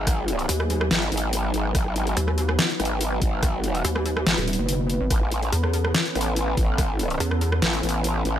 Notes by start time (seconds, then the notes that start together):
Already playing: G#1 F#3 B3 D#4 G#4 B4
0.07 kick, cross-stick, closed hi-hat
0.28 closed hi-hat
0.39 closed hi-hat
0.49 D#2, closed hi-hat
0.60 cross-stick
0.70 closed hi-hat
0.81 cross-stick
0.91 G#1, snare, closed hi-hat
1.02 closed hi-hat
1.12 G#1, closed hi-hat
1.17 closed hi-hat
1.33 closed hi-hat
1.54 G#1, closed hi-hat
1.75 G#1 F#4, kick, cross-stick, closed hi-hat
1.96 closed hi-hat
2.07 closed hi-hat
2.17 D#2, closed hi-hat
2.28 cross-stick
2.38 closed hi-hat
2.49 cross-stick
2.59 snare, closed hi-hat
2.70 closed hi-hat
2.80 G#1, cross-stick, closed hi-hat
2.85 closed hi-hat
3.01 closed hi-hat
3.22 G#1, kick, closed hi-hat
3.43 kick, cross-stick, closed hi-hat
3.64 closed hi-hat
3.75 closed hi-hat
3.85 D#2, closed hi-hat
3.96 cross-stick
4.06 closed hi-hat
4.17 cross-stick
4.27 G#1, snare, closed hi-hat
4.38 D#1, closed hi-hat
4.48 closed hi-hat
4.53 closed hi-hat
4.59 F#1
4.69 closed hi-hat
4.90 closed hi-hat
5.01 G#1
5.10 A1 E3 C#4 A4, kick, cross-stick, closed hi-hat
5.32 closed hi-hat
5.43 closed hi-hat
5.52 E2, closed hi-hat
5.64 cross-stick
5.73 closed hi-hat
5.85 cross-stick
5.94 snare, closed hi-hat
6.06 closed hi-hat
6.15 A1, cross-stick, closed hi-hat
6.21 closed hi-hat
6.36 closed hi-hat
6.57 A1, kick, closed hi-hat
6.78 kick, cross-stick, closed hi-hat
6.99 closed hi-hat
7.10 closed hi-hat
7.20 E2, closed hi-hat
7.31 cross-stick
7.41 closed hi-hat
7.52 cross-stick
7.62 A1, snare, closed hi-hat
7.73 closed hi-hat
7.83 A1, closed hi-hat
7.89 closed hi-hat
8.04 closed hi-hat
8.25 A1, closed hi-hat